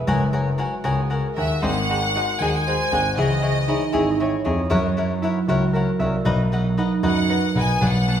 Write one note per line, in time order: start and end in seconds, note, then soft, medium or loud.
0.00 1.64 E4 medium
0.00 0.84 G#4 medium
0.00 1.18 B4 medium
0.00 1.54 E5 medium
0.07 0.57 F#1 loud
0.07 1.62 G#3 medium
0.07 0.23 A#4 medium
0.07 0.22 C#5 medium
0.07 0.23 F#5 loud
0.07 0.23 G#5 loud
0.33 0.48 A#4 medium
0.33 0.48 C#5 medium
0.33 0.49 F#5 medium
0.33 0.49 G#5 medium
0.58 2.15 F#4 medium
0.58 0.74 A#4 medium
0.58 0.74 C#5 medium
0.58 0.74 F#5 medium
0.58 0.74 G#5 medium
0.84 1.18 C#2 medium
0.84 2.42 G#4 medium
0.84 1.00 A#4 medium
0.84 1.00 C#5 medium
0.84 1.00 F#5 medium
0.84 1.00 G#5 medium
1.10 1.26 A#4 soft
1.10 3.24 A#4 medium
1.10 1.26 C#5 medium
1.10 1.26 F#5 medium
1.10 1.26 G#5 medium
1.36 1.54 D#2 medium
1.36 1.52 A#4 soft
1.36 1.52 C#5 medium
1.36 1.60 E5 medium
1.36 1.53 F#5 soft
1.36 2.93 F#5 medium
1.36 1.53 G#5 soft
1.62 2.13 G#1 medium
1.62 3.22 G#3 medium
1.62 1.78 D#4 medium
1.62 1.78 G#4 medium
1.62 1.78 C5 medium
1.62 1.78 F#5 medium
1.62 2.41 F#5 loud
1.90 2.04 D#4 medium
1.90 2.05 G#4 medium
1.90 2.05 C5 medium
1.90 2.05 F#5 medium
2.15 2.30 D#4 medium
2.15 4.59 F#4 medium
2.15 2.30 G#4 medium
2.15 2.30 C5 medium
2.15 2.31 F#5 medium
2.40 2.73 D#2 medium
2.40 2.56 D#4 medium
2.40 2.56 G#4 medium
2.40 4.69 G#4 medium
2.40 2.56 C5 medium
2.40 2.56 F#5 medium
2.40 2.47 G#5 medium
2.48 2.54 F#5 medium
2.54 3.17 G#5 medium
2.67 2.82 D#4 medium
2.67 2.82 G#4 medium
2.67 4.27 C5 medium
2.67 2.82 C5 medium
2.67 2.83 F#5 medium
2.91 3.09 G#1 medium
2.91 3.07 D#4 soft
2.91 3.07 G#4 soft
2.91 3.07 C5 soft
2.91 3.07 F#5 soft
2.91 4.55 F#5 medium
3.17 3.67 C#2 medium
3.17 4.75 E3 medium
3.17 3.32 E4 medium
3.17 3.33 G#4 medium
3.17 3.33 C#5 medium
3.17 4.15 D#5 medium
3.17 3.33 D#5 medium
3.42 3.58 E4 medium
3.42 3.58 G#4 medium
3.42 3.58 C#5 medium
3.42 3.58 D#5 medium
3.68 4.01 D#4 medium
3.68 3.83 E4 medium
3.68 3.83 G#4 medium
3.68 3.84 C#5 medium
3.68 3.84 D#5 medium
3.93 4.27 G#1 medium
3.93 4.08 E4 medium
3.93 4.52 E4 medium
3.93 4.09 G#4 medium
3.93 4.09 C#5 loud
3.93 4.09 D#5 medium
4.20 4.35 E4 medium
4.20 4.35 G#4 medium
4.20 4.35 C#5 medium
4.20 6.13 C#5 medium
4.20 4.36 D#5 medium
4.44 4.62 F2 medium
4.44 4.60 E4 soft
4.44 4.60 G#4 medium
4.44 4.60 C#5 medium
4.44 4.61 D#5 medium
4.44 5.28 D#5 medium
4.70 5.21 F#2 medium
4.70 6.23 F#3 medium
4.70 4.86 E4 loud
4.70 4.86 A#4 medium
4.70 4.86 C#5 loud
4.70 4.86 F#5 loud
4.97 5.12 E4 medium
4.97 5.12 A#4 medium
4.97 5.12 C#5 medium
4.97 5.13 F#5 medium
5.22 6.84 E4 medium
5.22 5.38 E4 medium
5.22 5.38 A#4 medium
5.22 5.38 C#5 medium
5.22 5.39 F#5 medium
5.48 5.81 C#2 medium
5.48 5.63 E4 medium
5.48 7.04 F#4 medium
5.48 5.64 A#4 medium
5.48 5.64 C#5 medium
5.48 5.64 F#5 medium
5.73 5.89 E4 soft
5.73 7.36 A#4 medium
5.73 5.90 A#4 medium
5.73 5.90 C#5 medium
5.73 5.90 F#5 medium
5.99 6.16 C2 medium
5.99 6.15 E4 medium
5.99 6.15 A#4 soft
5.99 6.15 C#5 medium
5.99 6.84 E5 medium
5.99 6.16 F#5 medium
6.25 6.76 B1 medium
6.25 7.81 F#3 medium
6.25 6.41 D#4 medium
6.25 6.41 B4 medium
6.25 6.41 D#5 loud
6.25 6.41 F#5 medium
6.52 6.67 D#4 medium
6.52 6.67 B4 medium
6.52 6.67 D#5 medium
6.52 6.68 F#5 medium
6.77 6.93 D#4 medium
6.77 8.20 D#4 medium
6.77 6.93 B4 medium
6.77 6.93 D#5 medium
6.77 6.94 F#5 medium
7.03 7.37 F#2 medium
7.03 7.19 D#4 medium
7.03 8.20 F#4 medium
7.03 7.19 B4 medium
7.03 7.19 D#5 medium
7.03 7.19 F#5 medium
7.07 7.54 F#5 medium
7.30 7.45 D#4 medium
7.30 8.20 B4 medium
7.30 7.46 B4 medium
7.30 7.46 D#5 medium
7.30 7.46 F#5 medium
7.55 7.72 B1 medium
7.55 7.71 D#4 soft
7.55 7.72 B4 medium
7.55 8.20 D#5 medium
7.55 7.72 D#5 medium
7.55 7.72 F#5 medium
7.59 7.83 G#5 medium
7.81 8.15 B1 medium
7.81 8.20 F#3 medium
7.81 7.97 D4 medium
7.81 7.97 B4 medium
7.81 7.98 D5 medium
7.81 7.98 F#5 medium
7.86 8.20 F#5 medium
8.08 8.20 B3 medium
8.08 8.20 D4 medium
8.08 8.20 B4 medium
8.08 8.20 D5 soft
8.08 8.20 F#5 medium